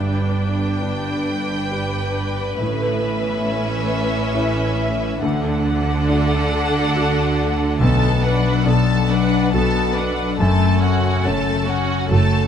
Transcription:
Already playing: G1 G2 D4 B4 G5
0.24 B3
0.54 D3
0.82 D4
1.13 D3
1.43 D4
1.71 G4 B4
2.03 D4
2.33 D3
2.60 A1 A2 C#4 E5
2.91 B3
3.19 E3
3.47 C#4
3.77 E3
4.05 C#4
4.34 E4 B4
4.64 C#4
4.94 E3
5.22 D2 D3 D4 A4 F#5
5.52 D4
5.81 A3
6.09 D4 F#4
6.39 A3
6.67 F#4
6.95 F#4 A4
7.23 F#4
7.52 A3
7.81 B1 B2 B3 A4 A5
8.09 A3
8.23 D4 B4 F#5
8.38 F#3
8.66 B1 B2 B3 D4 A4 A5
8.95 F#3
9.10 D4 B4 F#5
9.24 D4
9.52 B1 B2 B3 F#4 A4 A5
9.82 D4
9.95 D4 B4 F#5
10.38 F#1 F#2 A3 A4 A5
10.68 A3
10.81 C#4 F#4 F#5
10.97 C#3
11.24 F#1 F#2 A3 C#4 A4 A5
11.55 C#3
11.67 C#4 F#4 F#5
11.83 C#4
12.11 F#1 F#2 A3 F#4 A4 A5
12.41 C#4

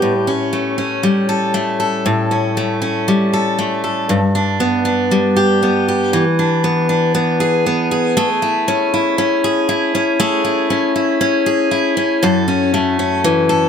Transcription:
Already playing: G3 B3 D4 G4
0.02 A2
0.27 C#4
0.53 A3
0.78 C#4
1.03 G3
1.29 A4
1.54 A3
1.80 A4
2.06 A2
2.31 C#4
2.57 A3
2.82 C#4
3.08 G3
3.33 A4
3.59 A3
3.84 A4
4.09 G2
4.35 D4
4.60 B3
4.85 D4
5.11 G3
5.36 G4
5.63 B3
5.88 G4
6.13 E3
6.39 D4
6.64 B3
6.89 D4
7.15 B3
7.40 G#4
7.66 B3
7.91 G#4
8.17 A3 G#4
8.42 E4
8.68 C#4
8.94 E4
9.18 C#4
9.44 G#4
9.69 E4
9.95 C#4
10.20 A3 G#4
10.45 E4
10.70 C#4
10.96 E4
11.21 C#4
11.46 G#4
11.71 E4
11.97 C#4
12.23 F#2 A4
12.48 C#4
12.74 A3
12.99 C#4
13.24 E3
13.49 A4

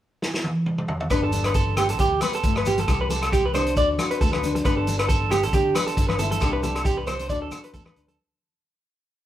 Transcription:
0.22 snare
0.34 snare
0.44 high tom
0.66 mid tom
0.78 mid tom
0.88 floor tom
1.00 floor tom
1.10 G1 G2 B3 D4 G4 B4, kick, cross-stick, closed hi-hat, low agogo, shekere
1.23 A4
1.32 D4, closed hi-hat, high conga, shekere
1.44 B4, cross-stick, closed hi-hat, low agogo
1.54 D3 A4, kick, closed hi-hat, shekere
1.77 B3 G4, cross-stick, closed hi-hat, high conga, low conga, low agogo, shekere
1.89 A4, closed hi-hat
1.99 D2 G2 B3 G4, kick, closed hi-hat, shekere
2.21 B3 B4, cross-stick, closed hi-hat, high conga, low agogo, shekere
2.33 A4, closed hi-hat
2.43 G1 A2, kick, closed hi-hat, shekere
2.56 B4, cross-stick, high conga, low agogo
2.65 B2 G4, closed hi-hat, low conga, shekere
2.78 A4, closed hi-hat, high conga
2.88 C2 C3 G4, muted nylon-string guitar stroke, kick, cross-stick, closed hi-hat, low agogo, shekere
3.01 B4
3.10 G4 A4, closed hi-hat, high conga, shekere
3.22 cross-stick, closed hi-hat, low agogo
3.32 G3 G4, kick, closed hi-hat, shekere
3.46 B4
3.54 D4 C5, cross-stick, closed hi-hat, high conga, low conga, low agogo, shekere
3.66 closed hi-hat
3.76 D2 D3 D4 F#4 D5, kick, closed hi-hat, shekere
3.98 F#4, cross-stick, closed hi-hat, high conga, low agogo, shekere
4.11 B4, closed hi-hat
4.21 D2 A3 A4, kick, closed hi-hat, shekere
4.33 B4, cross-stick, high conga, low agogo
4.43 D4, closed hi-hat, low conga, shekere
4.55 muted clean electric guitar stroke, closed hi-hat, high conga
4.65 G1 G2 B3 D4 G4 B4, kick, cross-stick, closed hi-hat, low agogo, shekere
4.77 A4
4.87 D4, closed hi-hat, high conga, shekere
4.99 B4, cross-stick, closed hi-hat, low agogo
5.08 D3 A4, kick, closed hi-hat, shekere
5.30 B3 G4, cross-stick, closed hi-hat, high conga, low conga, low agogo, shekere
5.43 A4, closed hi-hat
5.53 D2 G2 D4 G4, kick, closed hi-hat, shekere
5.75 B3 B4, cross-stick, closed hi-hat, high conga, low agogo, shekere
5.87 A4, closed hi-hat
5.97 G1 D3, kick, closed hi-hat, shekere
6.09 B4, cross-stick, high conga, low agogo
6.19 E4 A4, closed hi-hat, low conga, shekere
6.31 A4, closed hi-hat, high conga
6.41 C2 D4 G4, muted nylon-string guitar stroke, kick, cross-stick, closed hi-hat, low agogo, shekere
6.53 B4
6.63 G4 A4, closed hi-hat, high conga, low conga, shekere
6.75 cross-stick, closed hi-hat, low agogo
6.85 G3 G4, kick, closed hi-hat, shekere
6.97 B4
7.07 B3 C5, cross-stick, closed hi-hat, high conga, low conga, low agogo, shekere
7.19 D4, closed hi-hat
7.29 D2 D3 D4 F#4 D5, kick, closed hi-hat, shekere
7.42 A4
7.51 F#4, cross-stick, closed hi-hat, high conga, low conga, low agogo, shekere
7.64 B4, closed hi-hat
7.73 E2 A3 A4, kick, closed hi-hat, shekere
7.85 B4, cross-stick, high conga, low agogo
7.96 D2 D4, closed hi-hat
8.08 A4, closed hi-hat, high conga

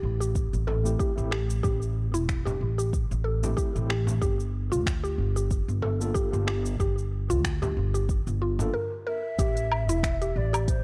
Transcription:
Already playing: G4
0.03 A1
0.20 G4, shaker
0.35 kick, shaker
0.53 A1, shaker
0.67 A4, frame drum
0.84 A3 C4 E4 G4, shaker
0.99 G4, kick, shaker
1.16 A1 A3 C4 E4 G4, shaker
1.31 G4, finger snap
1.50 shaker
1.63 A1 G4, kick, shaker
1.82 shaker
2.14 E1 E4, shaker
2.29 finger snap, kick, shaker
2.45 G4, frame drum, shaker
2.61 A1
2.78 G4, shaker
2.93 kick, shaker
3.11 A1, shaker
3.24 A4
3.43 A3 C4 E4 G4, frame drum, shaker
3.57 G4, kick, shaker
3.75 A1 A3 C4 E4 G4, shaker
3.90 G4, finger snap
4.07 frame drum, shaker
4.22 G1 G4, kick, shaker
4.40 shaker
4.72 D2 F4, shaker
4.86 finger snap, kick, shaker
5.04 G4, shaker
5.18 G1
5.36 G4, shaker
5.51 kick, shaker
5.68 G1, shaker
5.82 A4, frame drum
6.00 A#3 D4 F4 A4, shaker
6.14 G4, kick, shaker
6.32 G1 A#3 D4 F4 G4, shaker
6.47 G4, finger snap
6.66 shaker
6.80 G1 G4, kick, shaker
6.98 shaker
7.30 D2 F4, shaker
7.44 finger snap, kick, shaker
7.62 G4, frame drum, shaker
7.77 G1
7.94 G4, shaker
8.09 kick, shaker
8.27 G1, shaker
8.42 F4
8.59 A#3 D4 F4 A4, frame drum, shaker
8.74 A#4
9.07 A#4 E5
9.39 A1 G4, kick, closed hi-hat, shaker
9.57 closed hi-hat, shaker
9.72 low woodblock
9.89 E1 E4, closed hi-hat, shaker
10.03 finger snap, kick, closed hi-hat, shaker
10.22 G4, closed hi-hat, shaker
10.36 A1 D5
10.53 G4, closed hi-hat, low woodblock, shaker
10.68 C5, kick, closed hi-hat, shaker

